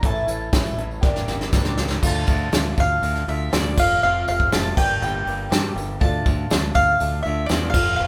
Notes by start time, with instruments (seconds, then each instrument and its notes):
0.01 fingered electric bass A1, steel-string acoustic guitar A2 E3 A3, grand piano E4 A4 C#5, kick, closed hi-hat
0.05 steel-string acoustic guitar C#4 E4, mandolin A5
0.15 tambourine
0.27 fingered electric bass A1, steel-string acoustic guitar A3 C#4 E4, closed hi-hat, tambourine
0.40 tambourine
0.53 fingered electric bass A1, steel-string acoustic guitar A2 E3 A3 C#4 E4, kick, snare, closed hi-hat, tambourine
0.66 tambourine
0.78 fingered electric bass A1, steel-string acoustic guitar A3 C#4 E4, closed hi-hat
0.91 tambourine
1.01 fingered electric bass G1, steel-string acoustic guitar G3 A#3 D4 G4, grand piano G4 A#4 D5, kick, snare, tambourine
1.16 snare
1.27 fingered electric bass G1, steel-string acoustic guitar G3 A#3 D4 G4, snare, tambourine
1.41 snare
1.53 fingered electric bass C#2, steel-string acoustic guitar G2 D3 G3 A#3 D4 G4, kick, snare, tambourine
1.65 snare
1.77 steel-string acoustic guitar G3 A#3 D4 G4, snare, tambourine
1.90 snare, tambourine
2.01 fingered electric bass D2, steel-string acoustic guitar D3 A3 D4 F4, grand piano F4 A4 D5 F5, kick, crash
2.07 mandolin A5
2.27 fingered electric bass D2, steel-string acoustic guitar A3 D4 F4, kick, open hi-hat, tambourine
2.52 fingered electric bass D2, steel-string acoustic guitar D3 A3 D4 F4, snare, open hi-hat, tambourine
2.77 fingered electric bass D2, steel-string acoustic guitar A3 D4 F4, mandolin F5, kick, open hi-hat, tambourine
3.01 fingered electric bass D2, steel-string acoustic guitar D3 A3 D4 F4, open hi-hat, tambourine
3.15 snare
3.26 fingered electric bass D2, steel-string acoustic guitar A3 D4 F4, mandolin E5, open hi-hat, tambourine
3.50 fingered electric bass D2, steel-string acoustic guitar D3 A3 D4 F4, mandolin D5, snare, open hi-hat, tambourine
3.75 fingered electric bass F1, steel-string acoustic guitar A3 C4 F4, grand piano F4 A4 C5 F5, kick, tambourine, crash
3.79 steel-string acoustic guitar F3, mandolin F5
4.02 fingered electric bass F1, steel-string acoustic guitar F2 C3 F3 A3 C4 F4, mandolin F5, tambourine
4.28 fingered electric bass F1, steel-string acoustic guitar F3 A3 C4 F4, mandolin F5, open hi-hat, tambourine
4.40 kick
4.52 fingered electric bass F1, steel-string acoustic guitar F2 C3 F3 A3 C4 F4, mandolin A5, snare, open hi-hat, tambourine
4.76 fingered electric bass G1, steel-string acoustic guitar A#3 D4 G4, grand piano G4 A#4 D5 G5, mandolin G5, kick, tambourine, crash
4.80 steel-string acoustic guitar G3
5.01 fingered electric bass G1, steel-string acoustic guitar G3 A#3 D4 G4, mandolin G5, tambourine
5.25 fingered electric bass G1, steel-string acoustic guitar G3 A#3 D4 G4, open hi-hat, tambourine
5.49 steel-string acoustic guitar G2 D3 G3 A#3 D4 G4, fingered electric bass G2, snare, open hi-hat, tambourine
5.73 fingered electric bass G1, steel-string acoustic guitar G3 A#3 D4 G4, open hi-hat
5.78 tambourine
5.99 fingered electric bass D2, steel-string acoustic guitar D3 A3 D4 F4, grand piano F4 A4 D5 F5, mandolin A5, kick, open hi-hat, tambourine
6.24 fingered electric bass D2, steel-string acoustic guitar A3 D4 F4, kick, open hi-hat, tambourine
6.50 fingered electric bass D2, steel-string acoustic guitar D3 A3 D4 F4, snare, open hi-hat, tambourine
6.74 fingered electric bass D2, steel-string acoustic guitar A3 D4 F4, mandolin F5, kick, open hi-hat, tambourine
6.99 fingered electric bass D2, steel-string acoustic guitar D3 A3 D4 F4, open hi-hat, tambourine
7.23 fingered electric bass D2, steel-string acoustic guitar D4 F4, mandolin E5, open hi-hat, tambourine
7.28 steel-string acoustic guitar A3
7.46 fingered electric bass E2, steel-string acoustic guitar D3 A3 D4, mandolin D5, snare, open hi-hat, tambourine
7.51 steel-string acoustic guitar F4
7.70 grand piano F4 A4 C5, steel-string acoustic guitar F4, mandolin F5, crash
7.74 fingered electric bass F1, steel-string acoustic guitar F3 A3 C4, grand piano F5, kick, tambourine
7.96 fingered electric bass F1, steel-string acoustic guitar F2 C3 F3, mandolin F5, tambourine
8.00 steel-string acoustic guitar A3 C4 F4